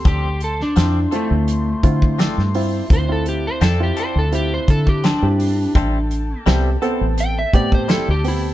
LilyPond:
<<
  \new Staff \with { instrumentName = "Horn section" } { \time 4/4 \key d \dorian \tempo 4 = 84 << { <a' c'' c'''>1 | <b' b''>1 | a''1 | } \\ { <d'' a''>1~ | <d'' a''>1 | <a' g''>1 | } >> }
  \new Staff \with { instrumentName = "Electric slide guitar" } { \time 4/4 \key d \dorian g'8 a'16 d'8. a2 r8 | c''16 a'16 g'16 c''16 a'16 g'16 c''16 a'16 g'16 c''16 a'16 g'16 d'4~ | d'4 r4 g''16 e''16 d''16 c''16 a'16 g'16 e'8 | }
  \new Staff \with { instrumentName = "Reed electric piano" } { \time 4/4 \key d \dorian r4 <c' e' f'>8 <c' e' f'>8. r16 <c' e' f'>8. r16 <c' e' f'>8 | <c' e' f'>16 <c' e' f'>8. r16 <c' e' f'>8 r16 <c' e' f'>4 r16 <c' e' g'>8. | r4 <b c' g'>8 <b c' a'>8. r16 <b c' g'>8. r16 <b c' g'>8 | }
  \new Staff \with { instrumentName = "Clean electric guitar" } { \time 4/4 \key d \dorian <f c' d' a'>8 r8 <f c' d' a'>8 <c' d' a'>8 r4 <f c' d' a'>8 r8 | r4 <f c' d' a'>8 <c' d' a'>8 r4 <f c' d' a'>8 r8 | <g c' e' a'>8 r8 <g c' e' a'>8 <c' e' a'>8 r4 <g c' e' a'>8 r8 | }
  \new Staff \with { instrumentName = "Fingered electric bass" } { \clef bass \time 4/4 \key d \dorian d,4 f,8 r16 d,8. d8. g,8. | d,4 f,8 r16 d,8. d8. g,8. | a,,4 c,8 r16 a,,8. a,8. d,8. | }
  \new DrumStaff \with { instrumentName = "Drums" } \drummode { \time 4/4 <hh bd>8 hh16 sn16 <hh sn>8 hh8 hh8 <hh bd>16 bd16 <hh sn>16 sn16 hho8 | <hh bd>8 hh8 <hh sn>8 hh8 hh8 <hh bd>16 bd16 <hh sn>8 hho8 | <hh bd>8 hh8 <hh sn>8 hh8 hh8 <hh bd>16 bd16 <hh sn>8 hho8 | }
>>